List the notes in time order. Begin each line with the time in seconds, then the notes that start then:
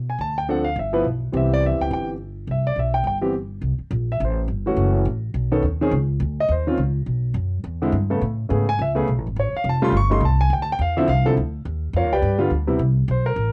Already playing: B2
0.09 G#5
0.19 D2 A5
0.38 G5
0.48 F3 C4 D4 A4 F#5
0.64 F5
0.76 G1 E5
0.93 F3 B3 E4 B4
1.04 B1
1.32 C2 E3 B3 C4 G4
1.37 E5
1.53 D5
1.66 E5
1.81 C#2 G5
1.91 G1 G5
2.47 C2 E5
2.67 D5
2.76 B1 E5
2.94 G5
3.04 G1 G5
3.21 E3 B3 C4 G4
3.61 C2
3.78 muted upright bass stroke
3.91 A#1
4.12 E5
4.20 A1
4.25 C5
4.48 G1
4.66 E3 A3 C#4 F#4
4.77 F#1
5.05 A1
5.34 B1
5.52 D#3 B3 C#4 A4
5.63 D#2
5.81 D#3 C4 C#4 G#4
5.91 C#2
6.20 D2
6.40 D#5
6.49 D#2 C5
6.67 D#3 C4 C#4 F4
6.77 C#2
7.06 B1
7.34 F#2
7.64 E2
7.82 D3 G#3 C4 E4
7.92 G2
8.10 C#3 A3 B3 A4
8.21 A2
8.49 G#2 C#3 A3 B3 G#4
8.69 G#5
8.79 C#2 E5
8.95 C#3 A3 B3 G#4
9.07 B1
9.18 A1
9.27 G#1
9.36 A1 C#5
9.53 muted upright bass stroke
9.57 F5
9.64 F1
9.69 A5
9.82 C#3 G3 A3 F4 C6
9.92 G1
9.97 C#6
10.10 C#3 G3 A3 D#4 C6
10.20 C2
10.25 A5
10.41 G#5
10.50 D2 G5
10.62 A5
10.72 G5
10.79 E2 F5
10.97 D3 F3 C4 E4 E5
11.08 C2 F5
11.25 D3 F3 C4 E4 A4
11.37 D2
11.65 D#2
11.93 F2 F4 A#4 C#5 F5
12.04 D#2
12.12 C#2 G4 B4 D5 G5
12.22 G2
12.38 D3 G3 B3 F4
12.50 D2
12.67 C3 G3 B3 E4
12.79 C2
13.08 B1 C5
13.26 A#4
13.36 A1